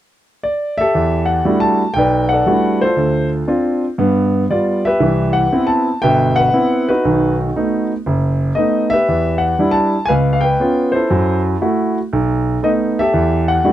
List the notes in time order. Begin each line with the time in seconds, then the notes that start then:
0.43 D5
0.78 G4 A4 E5
0.95 E2
1.26 F#5
1.45 G3 A3 D4 E4 F#4
1.60 A5
1.94 B1 G5
1.98 B4 D5
2.29 F#5
2.33 A4 D5
2.46 G3 A3 D4 E4 F#4
2.81 F4 A4 C5
2.96 D2
3.47 C4 D4 F4
3.98 G2 B3
4.50 G3 B3 F4 D5
4.85 G4 B4 E5
5.00 C2 E3
5.33 F#5
5.53 B3 C4 E4
5.67 A5
6.02 G1 B2 B4 E5 G5
6.36 B4 F#5
6.53 B3 C4 E4
6.89 D#4 F#4 B4
7.05 B1 D#3
7.56 A3 B3 D#4
8.06 F#1
8.55 A3 B3 D#4 D#5
8.90 G4 B4 E5
9.08 E2
9.38 F#5
9.59 G3 D4 E4
9.71 A5
10.06 B4 F5 G#5
10.10 C#2
10.33 F5
10.41 B4 G5
10.60 B3 C#4 F4
10.92 E4 A4 C5
11.10 F#2 F#3
11.61 A3 E4 F#4
12.13 B1
12.63 A3 B3 D#4 D#5
12.99 G4 A4 E5
13.14 E2
13.48 F#5
13.64 G3 A3 D4 E4 F#4